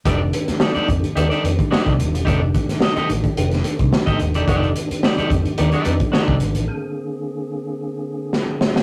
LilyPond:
<<
  \new Staff \with { instrumentName = "Clean electric guitar" } { \time 4/4 \key f \mixolydian \tempo 4 = 109 <ees' g' a' d''>16 r8. <ees' g' a' d''>16 <ees' g' a' d''>16 r8 <ees' g' a' d''>16 <ees' g' a' d''>16 r8 <ees' g' a' d''>16 r8. | <ees' g' a' d''>16 r8. <ees' g' a' ees''>16 <ees' g' a' ees''>16 r4. r16 <ees' g' a' ees''>16 r16 <ees' g' a' d''>16 | <ees' g' a' d''>16 r8. <ees' g' a' d''>16 <ees' g' a' d''>16 r8 <ees' g' a' d''>16 <ees' g' a' d''>16 r8 <ees' g' a' d''>16 r8. | r1 | }
  \new Staff \with { instrumentName = "Tonewheel organ" } { \time 4/4 \key f \mixolydian <ees a d' g'>1~ | <ees a d' g'>1~ | <ees a d' g'>1 | <d bes c' aes'>1 | }
  \new Staff \with { instrumentName = "Fingered electric bass" } { \clef bass \time 4/4 \key f \mixolydian f,,8 r4 f,16 r16 ees,16 r16 f,16 r8 c,16 ees,,16 e,,16 | f,,8 r4 a,,16 r16 f,,8 r16 c,16 r16 a,,16 ees,,16 e,,16 | f,,8 r4 f,16 r16 ees,16 r16 f,16 r8 c,16 aes,,16 a,,16 | r1 | }
  \new DrumStaff \with { instrumentName = "Drums" } \drummode { \time 4/4 <hh bd>8 hh16 <hh sn>16 sn16 hh16 <hh bd>16 hh16 hh16 hh16 hh16 <hh bd>16 sn16 <hh bd>16 hh16 hh16 | <hh bd>8 <hh bd>16 <hh sn>16 sn16 hh16 hh16 <hh bd>16 hh16 <hh sn>16 hh16 <hh bd>16 sn16 <hh bd>16 hh16 hh16 | <hh bd>16 hh16 hh16 hh16 sn16 hh16 <hh bd>16 hh16 hh16 hh16 hh16 <hh bd>16 sn16 bd16 hh16 hh16 | r4 r4 r4 sn8 sn16 sn16 | }
>>